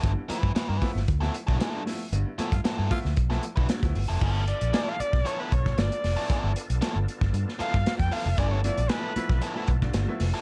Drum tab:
CC |----------------|----------------|x---------------|----------------|
HH |x-x-x-o-x-x-x-o-|x-xxx-o-x-x-xxo-|--xxx-x-x-x-xxo-|x-xxx-x-x-x-xxo-|
SD |----o--o-o-oo-o-|----o--o-o--oo--|----o--o---oo-o-|----o--o-o-ooo--|
BD |o--o--o-o--o----|---o--o-o--o-o--|o------o--oo----|o------o---o-o--|

CC |----------------|
HH |x-xxx-x-x-x-x-o-|
SD |----o--o---oo-o-|
BD |o------o--oo----|